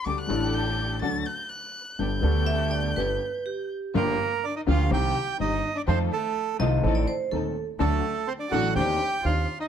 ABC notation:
X:1
M:4/4
L:1/16
Q:1/4=124
K:G
V:1 name="Bandoneon"
z16 | z16 | [K:Gm] B4 d e f2 g4 e3 d | c2 A4 z8 z2 |
A4 c d ^f2 g4 =f3 e |]
V:2 name="Vibraphone"
z16 | z4 e2 d2 B4 G4 | [K:Gm] z16 | z6 e3 d c2 A3 z |
z16 |]
V:3 name="String section"
[DGA]2 [DGA]6 [DFA]2 z6 | [B,GA]2 [B,GA]6 [B,GA]2 z6 | [K:Gm] [B,FG]2 z4 [B,FG]2 [CEG]2 z2 [CEG]2 z2 | [EFA]2 z4 [EFA]2 [CEA]2 z2 [CEA]2 z2 |
[D^FA]2 z4 [DFA]2 [DEc]2 z2 [DEc]2 z2 |]
V:4 name="Violin"
d' f'3 g'4 a'2 g'2 f'4 | g'12- g'2 z2 | [K:Gm] B,4 D E F2 G4 E3 D | C2 A,4 z8 z2 |
A,4 C D ^F2 G4 =F3 E |]
V:5 name="Grand piano" clef=bass
[D,,D,G,A,DA]2 [A,,,A,,G,A,DA]6 [D,,D,F,A,DA]2 z6 | [G,,,G,,G,B,DA]2 [D,,D,G,B,DA]6 [G,,,G,,G,B,DA]2 z6 | [K:Gm] [G,,,G,,F,B,DG]2 z4 [D,,D,F,B,DG]2 [C,,C,E,G,CG]2 z2 [G,,,G,,E,G,CG]2 z2 | [F,,E,F,A,CF]2 z4 [C,,C,E,A,CF]2 [A,,,A,,E,A,CA]2 z2 [E,,,E,,E,A,CA]2 z2 |
[D,,D,^F,A,DA]2 z4 [A,,,A,,F,A,DA]2 [E,,E,CDG]2 z2 [E,,E,CDG]2 z2 |]
V:6 name="Upright bass" clef=bass
D,,2 A,,,6 D,,2 z6 | G,,,2 D,,6 G,,,2 z6 | [K:Gm] G,,,2 z4 D,,2 C,,2 z2 G,,,2 z2 | F,,2 z4 C,,2 A,,,2 z2 E,,2 z2 |
D,,2 z4 A,,,2 E,,2 z2 E,,2 z2 |]